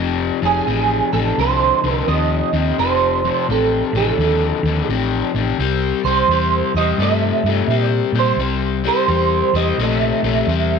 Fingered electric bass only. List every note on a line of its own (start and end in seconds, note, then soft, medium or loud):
0.00 0.30 F1 medium
0.42 0.60 F1 medium
0.67 1.00 A1 medium
1.13 1.31 A1 medium
1.38 1.71 C2 medium
1.83 2.01 C2 medium
2.08 2.41 D#2 medium
2.53 2.71 D#2 medium
2.78 3.29 F1 medium
3.49 3.81 A1 medium
3.93 4.11 A1 medium
4.17 4.51 D#2 medium
4.63 4.81 D#2 medium
4.88 5.21 A1 medium
5.34 5.52 A1 medium
5.59 5.92 C2 medium
6.04 6.22 C2 medium
6.28 6.61 E2 medium
6.74 6.92 E2 medium
6.98 7.31 G2 medium
7.44 7.61 G2 medium
7.67 8.01 A#2 medium
8.12 8.31 A#2 medium
8.36 8.88 C2 medium
9.08 9.41 E2 medium
9.53 9.71 E2 medium
9.78 10.11 A#1 medium
10.23 10.41 A#1 medium
10.47 10.79 E2 medium